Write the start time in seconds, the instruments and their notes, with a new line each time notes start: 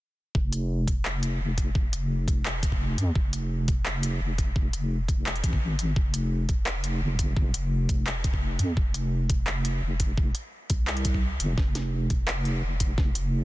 0.35 wobble bass F1, kick
0.53 closed hi-hat
0.88 kick, closed hi-hat
1.05 clap
1.23 closed hi-hat
1.40 wobble bass F1
1.58 kick, closed hi-hat
1.75 kick
1.93 wobble bass F1, closed hi-hat
2.28 kick, closed hi-hat
2.45 clap
2.63 kick, closed hi-hat
2.72 kick
2.98 wobble bass F2, closed hi-hat
3.15 wobble bass F1, kick
3.33 closed hi-hat
3.68 kick, closed hi-hat
3.86 clap
4.03 closed hi-hat
4.21 wobble bass F1
4.38 kick, closed hi-hat
4.56 kick
4.73 wobble bass F1, closed hi-hat
5.08 kick, closed hi-hat
5.26 clap
5.36 closed hi-hat
5.44 wobble bass G#1, kick, closed hi-hat
5.53 kick
5.79 closed hi-hat
5.96 wobble bass F1, kick
6.14 closed hi-hat
6.49 kick, closed hi-hat
6.66 clap
6.84 closed hi-hat
7.02 wobble bass F1
7.19 kick, closed hi-hat
7.37 kick
7.54 wobble bass F1, closed hi-hat
7.89 kick, closed hi-hat
8.07 clap
8.24 kick, closed hi-hat
8.33 kick
8.59 wobble bass F2, closed hi-hat
8.77 wobble bass F1, kick
8.94 closed hi-hat
9.30 kick, closed hi-hat
9.47 clap
9.65 closed hi-hat
9.83 wobble bass F1
10.00 kick, closed hi-hat
10.18 kick
10.35 closed hi-hat
10.70 wobble bass C2, kick, closed hi-hat
10.87 clap
10.97 closed hi-hat
11.05 kick, closed hi-hat
11.14 kick
11.40 wobble bass F1, closed hi-hat
11.58 wobble bass F1, kick, snare
11.75 snare, closed hi-hat
12.10 kick, closed hi-hat
12.28 clap
12.45 open hi-hat
12.63 wobble bass F1
12.80 kick, closed hi-hat
12.98 kick, snare
13.15 wobble bass F1, closed hi-hat